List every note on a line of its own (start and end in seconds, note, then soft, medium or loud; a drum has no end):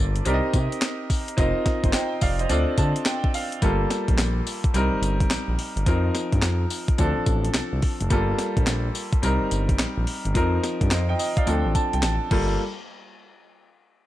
0.00 0.21 G1 loud
0.00 0.23 A#3 medium
0.00 0.23 F4 medium
0.00 0.24 G4 medium
0.00 0.24 A4 medium
0.00 0.26 D5 medium
0.16 closed hi-hat medium
0.25 0.41 C2 loud
0.25 1.35 C4 medium
0.25 1.36 D#4 medium
0.25 1.36 G4 medium
0.25 1.36 A#4 medium
0.25 0.35 D5 medium
0.25 closed hi-hat medium
0.25 tambourine medium
0.34 1.38 D#5 medium
0.54 0.69 C3 loud
0.54 kick medium
0.54 closed hi-hat medium
0.54 tambourine medium
0.72 closed hi-hat medium
0.82 snare loud
0.82 clap loud
0.82 closed hi-hat medium
0.82 tambourine medium
1.10 kick medium
1.10 open hi-hat medium
1.10 tambourine medium
1.28 closed hi-hat medium
1.37 1.53 F1 loud
1.37 2.47 C4 medium
1.37 2.47 D#4 medium
1.37 2.48 F4 medium
1.37 2.48 A#4 medium
1.37 1.66 D#5 medium
1.37 kick loud
1.37 closed hi-hat medium
1.37 tambourine medium
1.66 kick loud
1.66 snare medium
1.66 closed hi-hat medium
1.84 1.92 G1 medium
1.84 1.94 C5 medium
1.84 1.93 D#5 medium
1.84 kick loud
1.84 closed hi-hat medium
1.93 2.21 D#5 medium
1.93 2.20 G5 medium
1.93 snare loud
1.93 clap loud
1.93 closed hi-hat medium
1.93 tambourine loud
2.21 2.45 F1 medium
2.21 2.39 D5 medium
2.21 2.39 F5 medium
2.21 kick loud
2.21 open hi-hat medium
2.21 tambourine medium
2.39 2.67 C5 medium
2.39 2.67 D#5 medium
2.39 closed hi-hat medium
2.49 2.65 D2 loud
2.49 3.59 C4 medium
2.49 3.60 D4 medium
2.49 3.60 F4 medium
2.49 3.60 A4 medium
2.49 3.61 D5 medium
2.49 closed hi-hat medium
2.49 tambourine medium
2.78 2.93 D3 loud
2.78 3.04 A5 medium
2.78 kick medium
2.78 closed hi-hat medium
2.78 tambourine medium
2.96 closed hi-hat medium
3.06 3.32 G5 medium
3.06 snare loud
3.06 clap medium
3.06 closed hi-hat medium
3.06 tambourine medium
3.24 kick loud
3.34 3.60 F5 medium
3.34 open hi-hat medium
3.34 tambourine medium
3.52 closed hi-hat medium
3.62 3.85 G1 loud
3.62 4.72 G3 medium
3.62 4.72 A#3 medium
3.62 4.73 F4 medium
3.62 4.73 A4 medium
3.62 kick loud
3.62 closed hi-hat medium
3.62 tambourine medium
3.90 snare medium
3.90 closed hi-hat medium
3.90 tambourine medium
4.08 4.16 A#1 medium
4.08 kick loud
4.08 closed hi-hat medium
4.18 4.41 A#1 medium
4.18 snare loud
4.18 clap loud
4.18 closed hi-hat medium
4.18 tambourine medium
4.47 open hi-hat medium
4.47 tambourine medium
4.64 kick loud
4.64 closed hi-hat medium
4.74 4.89 C2 loud
4.74 5.84 G3 medium
4.74 5.84 C4 medium
4.74 5.85 D#4 medium
4.74 5.85 A#4 medium
4.74 closed hi-hat medium
4.74 tambourine medium
4.92 4.96 G1 medium
5.02 5.25 G1 medium
5.02 closed hi-hat medium
5.02 tambourine medium
5.20 kick loud
5.20 closed hi-hat medium
5.30 5.38 A#1 soft
5.30 snare loud
5.30 clap medium
5.30 closed hi-hat medium
5.30 tambourine medium
5.48 5.57 A#1 medium
5.59 open hi-hat medium
5.76 5.85 G1 loud
5.76 closed hi-hat medium
5.86 6.10 F2 loud
5.86 6.96 F3 medium
5.86 6.96 C4 medium
5.86 6.97 D#4 medium
5.86 6.97 A#4 medium
5.86 kick loud
5.86 closed hi-hat medium
5.86 tambourine medium
6.15 snare medium
6.15 closed hi-hat medium
6.15 tambourine medium
6.32 6.41 G2 medium
6.32 kick medium
6.32 closed hi-hat medium
6.42 6.66 F2 medium
6.42 snare loud
6.42 clap medium
6.42 closed hi-hat medium
6.42 tambourine medium
6.70 open hi-hat medium
6.70 tambourine medium
6.88 kick loud
6.88 closed hi-hat soft
6.98 7.14 D2 loud
6.98 8.08 F3 medium
6.98 8.08 C4 medium
6.98 8.09 D4 medium
6.98 8.09 A4 medium
6.98 kick medium
6.98 closed hi-hat medium
6.98 tambourine medium
7.17 7.21 A1 medium
7.26 7.50 A1 loud
7.26 kick loud
7.26 closed hi-hat medium
7.26 tambourine medium
7.45 closed hi-hat medium
7.54 7.62 C2 medium
7.54 snare loud
7.54 clap medium
7.54 closed hi-hat medium
7.54 tambourine medium
7.73 7.81 C2 medium
7.82 kick medium
7.82 open hi-hat medium
8.00 8.09 F1 loud
8.00 closed hi-hat medium
8.10 8.34 G1 loud
8.10 9.20 G3 medium
8.10 9.21 A#3 medium
8.10 9.21 F4 medium
8.10 9.21 A4 medium
8.10 kick loud
8.10 closed hi-hat medium
8.10 tambourine medium
8.38 snare medium
8.38 closed hi-hat medium
8.38 tambourine medium
8.57 8.65 A#1 loud
8.57 kick loud
8.57 closed hi-hat soft
8.67 8.90 A#1 medium
8.67 snare loud
8.67 clap medium
8.67 closed hi-hat medium
8.67 tambourine medium
8.95 open hi-hat medium
8.95 tambourine medium
9.13 kick loud
9.13 closed hi-hat medium
9.22 9.38 C2 loud
9.22 10.32 G3 medium
9.22 10.33 C4 medium
9.22 10.33 D#4 medium
9.22 10.33 A#4 medium
9.22 closed hi-hat medium
9.22 tambourine medium
9.41 9.45 G1 soft
9.51 9.75 G1 medium
9.51 closed hi-hat medium
9.51 tambourine medium
9.69 kick loud
9.69 closed hi-hat medium
9.79 9.86 A#1 soft
9.79 snare loud
9.79 clap medium
9.79 closed hi-hat medium
9.79 tambourine medium
9.97 10.05 A#1 medium
10.07 open hi-hat medium
10.25 10.33 G1 medium
10.25 closed hi-hat medium
10.34 10.58 F2 loud
10.34 11.44 F3 medium
10.34 11.45 C4 medium
10.34 11.45 D#4 medium
10.34 11.46 A#4 medium
10.34 kick loud
10.34 closed hi-hat medium
10.34 tambourine medium
10.63 snare medium
10.63 closed hi-hat medium
10.63 tambourine medium
10.81 10.89 G2 medium
10.81 kick medium
10.81 closed hi-hat soft
10.91 11.14 F2 medium
10.91 11.09 C5 medium
10.91 11.08 D#5 medium
10.91 snare loud
10.91 clap medium
10.91 closed hi-hat medium
10.91 tambourine medium
11.09 11.17 D#5 medium
11.09 11.36 G5 medium
11.19 11.36 D#5 medium
11.19 open hi-hat medium
11.19 tambourine medium
11.37 11.64 D5 medium
11.37 11.47 F5 medium
11.37 kick loud
11.37 closed hi-hat medium
11.46 11.62 D2 loud
11.46 12.29 F3 medium
11.46 12.29 C4 medium
11.46 12.30 D4 medium
11.46 12.30 A4 medium
11.46 11.73 G5 medium
11.46 closed hi-hat medium
11.46 tambourine medium
11.65 11.73 A1 medium
11.75 11.92 A5 medium
11.75 kick medium
11.75 closed hi-hat medium
11.75 tambourine medium
11.93 12.02 C2 medium
11.93 12.03 G5 medium
11.93 closed hi-hat medium
12.03 12.18 A1 loud
12.03 12.29 A5 medium
12.03 snare loud
12.03 clap medium
12.03 closed hi-hat medium
12.03 tambourine medium
12.31 12.57 G1 loud
12.31 12.57 G3 medium
12.31 12.57 A#3 medium
12.31 12.57 F4 medium
12.31 12.57 A4 loud
12.31 kick loud
12.31 crash medium